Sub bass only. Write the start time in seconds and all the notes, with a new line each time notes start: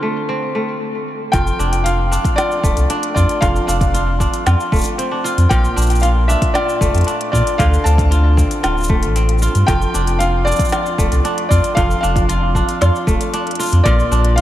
1.33 F1
1.59 F1
2.64 D1
2.77 C2
3.16 F2
3.42 F1
3.68 F1
4.46 F2
4.72 D1
5.37 F2
5.50 A#1
5.77 A#1
6.81 F1
6.94 F2
7.33 A#2
7.59 D2
7.85 D2
8.64 D1
9.03 A1
9.55 G2
9.68 F1
9.94 F1
10.98 D1
11.12 C2
11.51 F2
11.77 F1
12.03 F1
12.81 F2
13.07 D1
13.72 F2
13.85 A#1
14.11 A#1